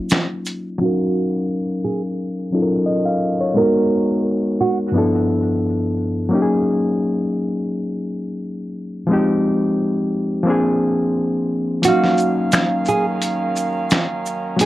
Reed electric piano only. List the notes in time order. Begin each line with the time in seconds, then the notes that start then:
Already playing: F#3 A#3 C#4 D#4 F4
0.78 F#3 C#4 D#4
0.83 A#4 F5
2.52 F#3 C#4 D#4 F4 A4
2.62 A#4
2.86 D#5
3.05 F5
3.41 C#5
3.54 G#3 B3 D#4
3.59 F#4 A#4
4.91 G2 F3 B3
4.96 D4 E4 A4
6.29 F#3 A#3 C#4
6.34 D#4 G4
6.42 G#4
9.07 F3 G#3 C4
9.11 D#4 G4
10.43 F3 A#3 C4
10.48 D4 G#4
11.82 F3 A#3 C#4
11.87 F#3 D#4 F5
14.56 F#3 A#3 B3
14.61 D#4